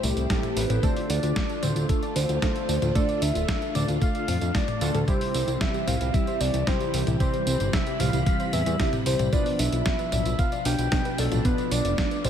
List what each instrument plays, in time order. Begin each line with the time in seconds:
Already playing: string machine A3 E4 G4 C5 B5
0.03 analog synth bass C2, synth arpeggio sound A3, soft synth lead G4, open hi-hat, high tom, tambourine
0.17 analog synth bass C2, synth arpeggio sound C4, closed hi-hat, tambourine
0.30 analog polysynth A2 C4 E4 G4 A4, synth arpeggio sound G3, kick, snare, closed hi-hat, tambourine
0.43 synth arpeggio sound E4, closed hi-hat, high tom, tambourine
0.57 analog synth bass A1, synth arpeggio sound G4, soft synth lead B4, open hi-hat, tambourine
0.70 analog synth bass A1, synth arpeggio sound C4, closed hi-hat, high tom, tambourine
0.83 analog polysynth D3 A3 D4 F4 A4, synth arpeggio sound A3, string machine A3 D4 F4, soft synth lead C5, kick, closed hi-hat, tambourine
0.96 synth arpeggio sound D5, open hi-hat, tambourine
1.09 analog synth bass D2, synth arpeggio sound D4, soft synth lead D5, open hi-hat, tambourine
1.23 analog synth bass D2, synth arpeggio sound F4, closed hi-hat, tambourine
1.36 synth arpeggio sound A3, kick, snare, closed hi-hat, tambourine
1.49 synth arpeggio sound A4, closed hi-hat, tambourine
1.63 analog synth bass D2, soft synth lead C5, synth arpeggio sound D5, open hi-hat, high tom, tambourine
1.76 analog synth bass D2, synth arpeggio sound F4, closed hi-hat, tambourine
1.89 synth arpeggio sound A3, soft synth lead A4, kick, closed hi-hat, tambourine
2.03 synth arpeggio sound D5, closed hi-hat, tambourine
2.16 analog synth bass D2, synth arpeggio sound D4, soft synth lead C5, open hi-hat, tambourine
2.29 analog synth bass D2, synth arpeggio sound F4, closed hi-hat, tambourine
2.42 analog polysynth D3 A3 D4 F4 A4, synth arpeggio sound A3, kick, snare, closed hi-hat, tambourine
2.55 synth arpeggio sound A4, closed hi-hat, tambourine
2.69 analog synth bass D2, synth arpeggio sound D5, open hi-hat, tambourine
2.82 analog synth bass D2, synth arpeggio sound F4, closed hi-hat, high tom, tambourine
2.95 analog polysynth D3 A3 D4 F4 A4, synth arpeggio sound A3, soft synth lead D5, kick, closed hi-hat, tambourine
3.09 synth arpeggio sound D5, closed hi-hat, tambourine
3.22 analog synth bass D2, synth arpeggio sound D4, soft synth lead E5, open hi-hat, tambourine
3.35 analog synth bass D1, synth arpeggio sound F4, closed hi-hat, tambourine
3.48 synth arpeggio sound A3, kick, snare, closed hi-hat, tambourine
3.62 synth arpeggio sound A4, closed hi-hat, tambourine
3.75 analog synth bass D2, synth arpeggio sound D5, soft synth lead D5, open hi-hat, high tom, tambourine
3.88 analog synth bass D2, synth arpeggio sound F4, closed hi-hat, tambourine
4.02 synth arpeggio sound A3, soft synth lead F5, kick, closed hi-hat, tambourine
4.15 synth arpeggio sound D5, closed hi-hat, tambourine
4.28 analog synth bass F2, synth arpeggio sound F5, open hi-hat, high tom, tambourine
4.41 analog synth bass F2, synth arpeggio sound F4, closed hi-hat, tambourine
4.55 synth arpeggio sound A3, soft synth lead D5, kick, snare, closed hi-hat, tambourine
4.68 synth arpeggio sound D5, closed hi-hat, high tom, tambourine
4.81 analog synth bass D2, analog polysynth A3 D4 F4 A4, synth arpeggio sound F4, open hi-hat, tambourine
4.95 analog synth bass D2, synth arpeggio sound A4, closed hi-hat, high tom, tambourine
5.08 analog polysynth C3 G3 C4 E4 G4, string machine E3 G3 C4, synth arpeggio sound G3, soft synth lead C5, kick, closed hi-hat, tambourine
5.21 synth arpeggio sound C5, open hi-hat, tambourine
5.34 analog synth bass C2, synth arpeggio sound C4, open hi-hat, tambourine
5.48 analog synth bass C2, synth arpeggio sound E4, closed hi-hat, tambourine
5.61 synth arpeggio sound G3, soft synth lead E5, kick, snare, closed hi-hat, tambourine
5.74 synth arpeggio sound G4, closed hi-hat, tambourine
5.87 analog synth bass C2, synth arpeggio sound C5, soft synth lead F5, open hi-hat, high tom, tambourine
6.01 analog synth bass C2, synth arpeggio sound E4, closed hi-hat, tambourine
6.14 synth arpeggio sound G3, soft synth lead E5, kick, closed hi-hat, tambourine
6.27 synth arpeggio sound C5, closed hi-hat, tambourine
6.40 analog synth bass C2, synth arpeggio sound C4, soft synth lead D5, open hi-hat, tambourine
6.54 analog synth bass C2, synth arpeggio sound E4, closed hi-hat, tambourine
6.67 analog polysynth C3 G3 C4 E4 G4, synth arpeggio sound G3, soft synth lead C5, kick, snare, closed hi-hat, tambourine
6.80 synth arpeggio sound G4, closed hi-hat, tambourine
6.94 analog synth bass C2, synth arpeggio sound C5, open hi-hat, tambourine
7.07 analog synth bass C2, synth arpeggio sound E4, closed hi-hat, high tom, tambourine
7.20 analog polysynth C3 E3 G3 C4 G4, synth arpeggio sound G3, soft synth lead C5, string machine B5, kick, closed hi-hat, tambourine
7.34 synth arpeggio sound C5, closed hi-hat, tambourine
7.47 analog synth bass C2, synth arpeggio sound C4, open hi-hat, tambourine
7.60 analog synth bass G1, synth arpeggio sound E4, closed hi-hat, tambourine
7.73 synth arpeggio sound G3, soft synth lead E5, kick, snare, closed hi-hat, tambourine
7.87 synth arpeggio sound G4, closed hi-hat, tambourine
8.00 analog synth bass C2, synth arpeggio sound C5, soft synth lead F5, open hi-hat, high tom, tambourine
8.13 analog synth bass C2, synth arpeggio sound E4, closed hi-hat, tambourine
8.26 synth arpeggio sound G3, kick, closed hi-hat, tambourine
8.40 synth arpeggio sound C5, closed hi-hat, tambourine
8.53 analog synth bass E2, synth arpeggio sound C4, soft synth lead E5, open hi-hat, high tom, tambourine
8.66 analog synth bass E2, synth arpeggio sound E4, closed hi-hat, tambourine
8.79 analog polysynth C3 G3 C4 E4 G4, synth arpeggio sound G3, soft synth lead E5, kick, snare, closed hi-hat, tambourine
8.93 synth arpeggio sound G4, closed hi-hat, high tom, tambourine
9.06 analog synth bass C2, synth arpeggio sound C5, soft synth lead C5, open hi-hat, tambourine
9.19 analog synth bass C2, synth arpeggio sound E4, closed hi-hat, high tom, tambourine
9.33 analog polysynth B2 B3 D4 F4 B4, string machine F3 D4, synth arpeggio sound B3, soft synth lead D5, kick, closed hi-hat, tambourine
9.46 synth arpeggio sound D5, open hi-hat, tambourine
9.59 analog synth bass B1, synth arpeggio sound D4, soft synth lead E5, open hi-hat, tambourine
9.72 analog synth bass B1, synth arpeggio sound F4, closed hi-hat, tambourine
9.86 synth arpeggio sound B3, kick, snare, closed hi-hat, tambourine
9.99 synth arpeggio sound B4, closed hi-hat, tambourine
10.12 analog synth bass B1, synth arpeggio sound D5, soft synth lead E5, open hi-hat, high tom, tambourine
10.26 analog synth bass B1, synth arpeggio sound F4, closed hi-hat, tambourine
10.39 synth arpeggio sound B3, soft synth lead F5, kick, closed hi-hat, tambourine
10.52 synth arpeggio sound D5, closed hi-hat, tambourine
10.65 analog synth bass B1, synth arpeggio sound D4, soft synth lead G5, open hi-hat, tambourine
10.79 analog synth bass B1, synth arpeggio sound F4, closed hi-hat, tambourine
10.92 analog polysynth B2 B3 D4 F4 B4, synth arpeggio sound B3, kick, snare, closed hi-hat, tambourine
11.05 synth arpeggio sound B4, closed hi-hat, tambourine
11.18 analog synth bass B1, soft synth lead A4, synth arpeggio sound D5, open hi-hat, tambourine
11.32 analog synth bass B1, synth arpeggio sound F4, closed hi-hat, high tom, tambourine
11.45 analog polysynth B2 B3 D4 F4 B4, string machine A3, synth arpeggio sound B3, soft synth lead B4, kick, closed hi-hat, tambourine
11.58 synth arpeggio sound D5, closed hi-hat, tambourine
11.71 analog synth bass B1, synth arpeggio sound D4, soft synth lead D5, open hi-hat, tambourine
11.85 analog synth bass F1, synth arpeggio sound F4, closed hi-hat, tambourine
11.98 synth arpeggio sound B3, kick, snare, closed hi-hat, tambourine
12.11 synth arpeggio sound B4, closed hi-hat, tambourine
12.25 analog synth bass B1, soft synth lead C5, synth arpeggio sound D5, open hi-hat, high tom, tambourine